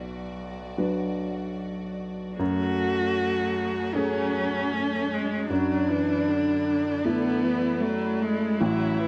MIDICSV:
0, 0, Header, 1, 5, 480
1, 0, Start_track
1, 0, Key_signature, 3, "minor"
1, 0, Tempo, 809717
1, 1423, Time_signature, 4, 2, 24, 8
1, 1424, Tempo, 775194
1, 5557, End_track
2, 0, Start_track
2, 0, Title_t, "String section"
2, 0, Program_c, 0, 48
2, 0, Note_on_c, 0, 54, 35
2, 0, Note_on_c, 0, 66, 35
2, 0, Note_on_c, 0, 74, 32
2, 1417, Note_off_c, 0, 54, 0
2, 1419, Note_on_c, 0, 68, 38
2, 1424, Note_off_c, 0, 74, 0
2, 1424, Note_on_c, 0, 54, 40
2, 1424, Note_on_c, 0, 73, 43
2, 1426, Note_off_c, 0, 66, 0
2, 3316, Note_off_c, 0, 68, 0
2, 3318, Note_off_c, 0, 73, 0
2, 3347, Note_on_c, 0, 74, 42
2, 3350, Note_on_c, 0, 64, 45
2, 5239, Note_off_c, 0, 54, 0
2, 5266, Note_off_c, 0, 74, 0
2, 5271, Note_on_c, 0, 61, 47
2, 5274, Note_on_c, 0, 73, 47
2, 5557, Note_off_c, 0, 61, 0
2, 5557, Note_off_c, 0, 64, 0
2, 5557, Note_off_c, 0, 73, 0
2, 5557, End_track
3, 0, Start_track
3, 0, Title_t, "Cello"
3, 0, Program_c, 1, 42
3, 1411, Note_on_c, 1, 66, 74
3, 2377, Note_on_c, 1, 61, 70
3, 2386, Note_off_c, 1, 66, 0
3, 3332, Note_off_c, 1, 61, 0
3, 3336, Note_on_c, 1, 62, 75
3, 4294, Note_on_c, 1, 59, 73
3, 4303, Note_off_c, 1, 62, 0
3, 4770, Note_on_c, 1, 57, 57
3, 4779, Note_off_c, 1, 59, 0
3, 5260, Note_off_c, 1, 57, 0
3, 5269, Note_on_c, 1, 64, 86
3, 5557, Note_off_c, 1, 64, 0
3, 5557, End_track
4, 0, Start_track
4, 0, Title_t, "Felt piano"
4, 0, Program_c, 2, 0
4, 0, Control_c, 2, 64, 127
4, 0, Note_on_c, 2, 35, 38
4, 0, Note_on_c, 2, 71, 46
4, 456, Note_off_c, 2, 71, 0
4, 462, Note_on_c, 2, 62, 26
4, 463, Note_on_c, 2, 54, 27
4, 465, Note_on_c, 2, 71, 28
4, 1395, Note_off_c, 2, 35, 0
4, 1398, Note_off_c, 2, 62, 0
4, 1399, Note_off_c, 2, 54, 0
4, 1399, Note_off_c, 2, 71, 0
4, 1418, Note_on_c, 2, 42, 49
4, 1434, Control_c, 2, 64, 0
4, 1533, Control_c, 2, 64, 127
4, 2383, Note_on_c, 2, 57, 34
4, 2383, Note_on_c, 2, 61, 35
4, 2389, Note_on_c, 2, 68, 38
4, 3315, Note_off_c, 2, 42, 0
4, 3315, Note_off_c, 2, 57, 0
4, 3315, Note_off_c, 2, 61, 0
4, 3318, Note_off_c, 2, 68, 0
4, 3344, Note_on_c, 2, 42, 48
4, 3355, Control_c, 2, 64, 0
4, 3457, Control_c, 2, 64, 127
4, 4305, Note_on_c, 2, 57, 34
4, 4306, Note_on_c, 2, 64, 37
4, 4308, Note_on_c, 2, 69, 39
4, 5239, Note_off_c, 2, 42, 0
4, 5242, Note_off_c, 2, 57, 0
4, 5242, Note_off_c, 2, 64, 0
4, 5243, Note_off_c, 2, 69, 0
4, 5266, Note_on_c, 2, 33, 57
4, 5274, Control_c, 2, 64, 0
4, 5367, Control_c, 2, 64, 127
4, 5557, Note_off_c, 2, 33, 0
4, 5557, End_track
5, 0, Start_track
5, 0, Title_t, "Viola"
5, 0, Program_c, 3, 41
5, 1421, Note_on_c, 3, 57, 58
5, 2386, Note_on_c, 3, 54, 50
5, 2395, Note_off_c, 3, 57, 0
5, 2868, Note_on_c, 3, 57, 55
5, 2877, Note_off_c, 3, 54, 0
5, 3114, Note_on_c, 3, 56, 52
5, 3123, Note_off_c, 3, 57, 0
5, 3344, Note_off_c, 3, 56, 0
5, 3348, Note_on_c, 3, 54, 49
5, 3592, Note_on_c, 3, 52, 52
5, 3601, Note_off_c, 3, 54, 0
5, 3828, Note_on_c, 3, 50, 44
5, 3838, Note_off_c, 3, 52, 0
5, 4301, Note_off_c, 3, 50, 0
5, 4308, Note_on_c, 3, 50, 49
5, 4542, Note_on_c, 3, 52, 46
5, 4551, Note_off_c, 3, 50, 0
5, 4782, Note_on_c, 3, 54, 53
5, 4791, Note_off_c, 3, 52, 0
5, 5027, Note_on_c, 3, 56, 53
5, 5036, Note_off_c, 3, 54, 0
5, 5263, Note_on_c, 3, 54, 58
5, 5273, Note_off_c, 3, 56, 0
5, 5508, Note_on_c, 3, 52, 50
5, 5517, Note_off_c, 3, 54, 0
5, 5557, Note_off_c, 3, 52, 0
5, 5557, End_track
0, 0, End_of_file